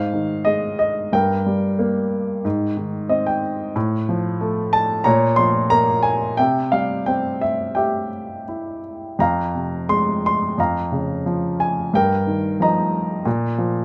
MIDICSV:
0, 0, Header, 1, 2, 480
1, 0, Start_track
1, 0, Key_signature, -4, "minor"
1, 0, Tempo, 668896
1, 811, Time_signature, 4, 2, 24, 8
1, 1289, Tempo, 652884
1, 4169, Tempo, 681818
1, 5609, Tempo, 705053
1, 7529, Tempo, 668151
1, 9878, End_track
2, 0, Start_track
2, 0, Title_t, "Grand piano"
2, 0, Program_c, 0, 0
2, 0, Control_c, 0, 64, 127
2, 0, Note_on_c, 0, 44, 52
2, 0, Note_on_c, 0, 72, 53
2, 0, Note_on_c, 0, 77, 75
2, 96, Note_on_c, 0, 51, 44
2, 320, Note_on_c, 0, 75, 74
2, 331, Note_on_c, 0, 56, 43
2, 342, Note_off_c, 0, 77, 0
2, 547, Note_off_c, 0, 75, 0
2, 567, Note_on_c, 0, 75, 64
2, 784, Note_off_c, 0, 44, 0
2, 787, Note_off_c, 0, 72, 0
2, 793, Note_off_c, 0, 51, 0
2, 793, Note_off_c, 0, 75, 0
2, 798, Note_off_c, 0, 56, 0
2, 808, Note_on_c, 0, 43, 56
2, 811, Note_on_c, 0, 79, 74
2, 820, Control_c, 0, 64, 0
2, 825, Note_on_c, 0, 70, 51
2, 928, Control_c, 0, 64, 127
2, 1049, Note_on_c, 0, 55, 41
2, 1285, Note_on_c, 0, 58, 53
2, 1738, Note_off_c, 0, 43, 0
2, 1745, Note_off_c, 0, 55, 0
2, 1752, Note_off_c, 0, 58, 0
2, 1767, Note_on_c, 0, 44, 61
2, 1778, Control_c, 0, 64, 0
2, 1911, Control_c, 0, 64, 127
2, 2005, Note_on_c, 0, 51, 42
2, 2242, Note_on_c, 0, 60, 40
2, 2243, Note_on_c, 0, 75, 56
2, 2358, Note_off_c, 0, 75, 0
2, 2358, Note_off_c, 0, 79, 0
2, 2369, Note_on_c, 0, 79, 60
2, 2467, Note_off_c, 0, 70, 0
2, 2699, Note_off_c, 0, 44, 0
2, 2703, Note_off_c, 0, 79, 0
2, 2705, Note_off_c, 0, 51, 0
2, 2711, Note_off_c, 0, 60, 0
2, 2730, Note_on_c, 0, 45, 66
2, 2737, Control_c, 0, 64, 0
2, 2863, Control_c, 0, 64, 127
2, 2973, Note_on_c, 0, 53, 49
2, 3209, Note_on_c, 0, 57, 53
2, 3444, Note_on_c, 0, 81, 84
2, 3657, Note_off_c, 0, 45, 0
2, 3666, Note_off_c, 0, 53, 0
2, 3672, Note_off_c, 0, 57, 0
2, 3675, Note_on_c, 0, 82, 81
2, 3685, Note_on_c, 0, 46, 67
2, 3685, Note_on_c, 0, 73, 62
2, 3691, Note_off_c, 0, 81, 0
2, 3693, Control_c, 0, 64, 0
2, 3818, Control_c, 0, 64, 127
2, 3911, Note_on_c, 0, 84, 84
2, 3927, Note_on_c, 0, 53, 43
2, 3928, Note_off_c, 0, 82, 0
2, 4160, Note_on_c, 0, 82, 95
2, 4169, Note_on_c, 0, 58, 47
2, 4170, Note_off_c, 0, 84, 0
2, 4389, Note_on_c, 0, 80, 73
2, 4408, Note_off_c, 0, 82, 0
2, 4617, Note_off_c, 0, 46, 0
2, 4617, Note_off_c, 0, 73, 0
2, 4624, Note_off_c, 0, 53, 0
2, 4630, Note_off_c, 0, 58, 0
2, 4634, Note_on_c, 0, 79, 80
2, 4643, Note_on_c, 0, 76, 48
2, 4644, Note_off_c, 0, 80, 0
2, 4646, Note_on_c, 0, 48, 61
2, 4652, Control_c, 0, 64, 0
2, 4765, Control_c, 0, 64, 127
2, 4876, Note_on_c, 0, 77, 66
2, 4881, Note_on_c, 0, 55, 38
2, 4887, Note_off_c, 0, 79, 0
2, 5119, Note_on_c, 0, 79, 65
2, 5127, Note_off_c, 0, 77, 0
2, 5127, Note_on_c, 0, 60, 43
2, 5356, Note_off_c, 0, 76, 0
2, 5366, Note_on_c, 0, 76, 65
2, 5370, Note_off_c, 0, 79, 0
2, 5593, Note_off_c, 0, 76, 0
2, 5601, Note_on_c, 0, 79, 55
2, 5610, Note_on_c, 0, 67, 47
2, 5614, Note_on_c, 0, 76, 46
2, 5821, Note_off_c, 0, 55, 0
2, 6072, Note_off_c, 0, 60, 0
2, 6102, Note_on_c, 0, 64, 38
2, 6314, Note_off_c, 0, 79, 0
2, 6558, Note_off_c, 0, 48, 0
2, 6558, Note_off_c, 0, 67, 0
2, 6560, Note_off_c, 0, 76, 0
2, 6572, Note_off_c, 0, 64, 0
2, 6583, Note_on_c, 0, 41, 58
2, 6592, Note_on_c, 0, 82, 70
2, 6594, Control_c, 0, 64, 0
2, 6600, Note_on_c, 0, 77, 51
2, 6717, Control_c, 0, 64, 127
2, 6826, Note_on_c, 0, 48, 37
2, 7036, Note_off_c, 0, 82, 0
2, 7061, Note_on_c, 0, 56, 50
2, 7062, Note_on_c, 0, 84, 76
2, 7281, Note_off_c, 0, 84, 0
2, 7313, Note_on_c, 0, 84, 79
2, 7501, Note_off_c, 0, 41, 0
2, 7510, Note_off_c, 0, 77, 0
2, 7511, Note_off_c, 0, 48, 0
2, 7516, Note_off_c, 0, 56, 0
2, 7530, Note_on_c, 0, 41, 54
2, 7540, Control_c, 0, 64, 0
2, 7543, Note_on_c, 0, 82, 64
2, 7544, Note_on_c, 0, 77, 49
2, 7545, Note_off_c, 0, 84, 0
2, 7648, Control_c, 0, 64, 127
2, 7772, Note_on_c, 0, 49, 45
2, 7993, Note_off_c, 0, 82, 0
2, 8019, Note_on_c, 0, 53, 45
2, 8262, Note_on_c, 0, 80, 66
2, 8474, Note_off_c, 0, 41, 0
2, 8479, Note_off_c, 0, 49, 0
2, 8480, Note_off_c, 0, 77, 0
2, 8487, Note_off_c, 0, 80, 0
2, 8489, Note_off_c, 0, 53, 0
2, 8503, Note_on_c, 0, 43, 60
2, 8512, Control_c, 0, 64, 0
2, 8516, Note_on_c, 0, 79, 80
2, 8525, Note_on_c, 0, 70, 55
2, 8619, Control_c, 0, 64, 127
2, 8744, Note_on_c, 0, 51, 39
2, 8981, Note_on_c, 0, 53, 48
2, 8996, Note_on_c, 0, 82, 73
2, 8999, Note_on_c, 0, 75, 47
2, 9001, Note_off_c, 0, 79, 0
2, 9424, Note_off_c, 0, 43, 0
2, 9430, Note_off_c, 0, 51, 0
2, 9434, Note_off_c, 0, 70, 0
2, 9438, Note_off_c, 0, 53, 0
2, 9451, Note_on_c, 0, 46, 62
2, 9462, Control_c, 0, 64, 0
2, 9584, Control_c, 0, 64, 127
2, 9687, Note_on_c, 0, 53, 45
2, 9878, Note_off_c, 0, 46, 0
2, 9878, Note_off_c, 0, 53, 0
2, 9878, Note_off_c, 0, 75, 0
2, 9878, Note_off_c, 0, 82, 0
2, 9878, End_track
0, 0, End_of_file